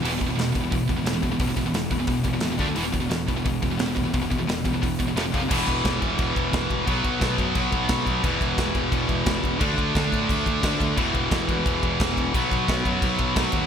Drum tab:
CC |x-------|--------|--------|--------|
HH |oooooooo|oooooooo|oooooooo|oooooooo|
SD |--o---o-|--o---o-|--o---o-|--o---o-|
BD |-o-ooo-o|oo-ooo-o|-o-ooo-o|oo-ooo-o|

CC |xxxxxxxx|xxxxxxxx|xxxxxxxx|xxxxxxxx|
HH |--------|--------|--------|--------|
SD |--o---o-|--o---o-|--o---o-|--o---o-|
BD |oooooooo|oooooooo|oooooooo|oooooooo|

CC |xxxxxxxx|xxxxxxxx|
HH |--------|--------|
SD |--o---o-|--o---o-|
BD |oooooooo|oooooooo|